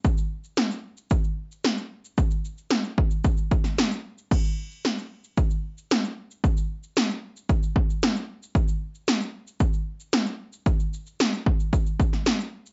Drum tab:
CC |----------------|----------------|x---------------|----------------|
SH |xx-xxx-xxx-xxx-x|xxxxxx-xxxxxxx-x|xx-xxx-xxx-xxx-x|xx-xxx-xxx-xxx-x|
SD |----o-------o---|----o------oo---|----o-------o---|----o-------o---|
BD |o-------o-------|o-----o-o-o-----|o-------o-------|o-------o-o-----|

CC |----------------|----------------|
SH |xx-xxx-xxx-xxx-x|xxxxxx-xxxxxxx-x|
SD |----o-------o---|----o------oo---|
BD |o-------o-------|o-----o-o-o-----|